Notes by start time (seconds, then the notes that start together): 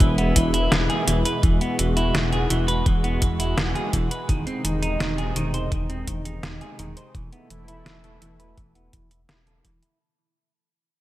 Already playing: B2 E3 G#3 E4
0.00 E1 E3, kick, closed hi-hat
0.18 B3, closed hi-hat
0.36 E1 E3, kick, closed hi-hat
0.54 E4, closed hi-hat
0.72 E1 E3, snare, closed hi-hat
0.90 G#4, closed hi-hat
1.08 E1 E3, closed hi-hat
1.25 B4, closed hi-hat
1.43 E1 E3 F#4, kick, closed hi-hat
1.61 B3, closed hi-hat
1.79 E1 E3, closed hi-hat
1.97 E4, closed hi-hat
2.15 E1 E3, snare, closed hi-hat
2.32 G#4, closed hi-hat
2.50 E1 E3, closed hi-hat
2.68 B4, closed hi-hat
2.86 E1 E3, kick, closed hi-hat
3.04 B3, closed hi-hat
3.22 E1 E3, kick, closed hi-hat
3.40 E4, closed hi-hat
3.57 E1 E3, snare, closed hi-hat
3.75 G#4, closed hi-hat
3.93 E1 E3, kick, closed hi-hat
4.11 B4, closed hi-hat
4.29 E1 C3 D#3 D#4, kick, closed hi-hat
4.47 C4, closed hi-hat
4.65 E1 D#3, closed hi-hat
4.82 D#4, closed hi-hat
5.00 E1 D#3, snare, closed hi-hat
5.18 G#4, closed hi-hat
5.36 E1 D#3, closed hi-hat
5.54 C5, closed hi-hat
5.72 E1 D#3, kick, closed hi-hat
5.90 C4, closed hi-hat
6.08 E1 D#3, kick, closed hi-hat
6.25 D#4, closed hi-hat
6.43 E1 D#3, snare, closed hi-hat
6.61 G#4, closed hi-hat
6.79 E1 D#3, closed hi-hat
6.97 C5, closed hi-hat
7.15 E1 B2 E3 A3 E4, kick, closed hi-hat
7.32 B3, closed hi-hat
7.50 E1 E3, closed hi-hat
7.68 E4, closed hi-hat
7.86 E1 E3, snare, closed hi-hat
8.04 A4, closed hi-hat
8.22 E1 E3, closed hi-hat
8.40 B4, closed hi-hat
8.58 E1 E3, kick, closed hi-hat
8.75 B3, closed hi-hat
8.93 E1 E3, kick, closed hi-hat
9.11 E4, closed hi-hat
9.29 E1 E4, snare, closed hi-hat
9.47 A4, closed hi-hat
9.65 E1 E3, kick, closed hi-hat
9.83 E4, closed hi-hat